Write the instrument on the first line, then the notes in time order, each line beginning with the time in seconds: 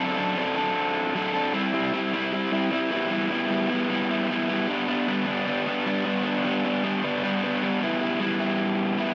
overdriven electric guitar
Already playing: F#3
0.00 C4 D4 A4
0.17 C4 D4 A4
0.36 F#3 C4 D4 A4
0.56 C4 D4 A4
1.15 F#3 C4 D4 A4
1.33 C4 D4 A4
1.53 G3 C4 E4
1.73 G3 C4 E4
1.93 G3 C4 E4
2.13 G3 C4 E4
2.32 G3 C4 E4
2.52 G3 C4 E4
2.71 G3 C4 E4
2.90 G3 B3 E4
3.10 G3 B3 E4
3.30 G3 B3 E4
3.50 G3 B3 E4
3.70 G3 B3 E4
3.90 G3 B3 E4
4.09 G3 B3 E4
4.29 G3 B3 E4
4.49 G3 B3 E4
4.68 G3 B3 D4
4.87 G3 B3 D4
5.08 G3 B3 D4
5.26 G3 B3 D4
5.46 G3 B3 D4
5.66 G3 B3 D4
5.86 G3 B3 D4
6.05 G3 B3 D4
6.25 G3 B3 D4
6.45 G3 B3 D4
6.65 G3 B3 D4
6.83 G3 B3 D4
7.03 G3 B3 D4
7.23 G3 B3 D4
7.43 G3 B3 D4
7.62 G3 B3 D4
7.81 G3 B3 E4
8.01 B3 E4
8.20 G3 B3 E4
8.39 B3 E4
8.98 G3 B3 E4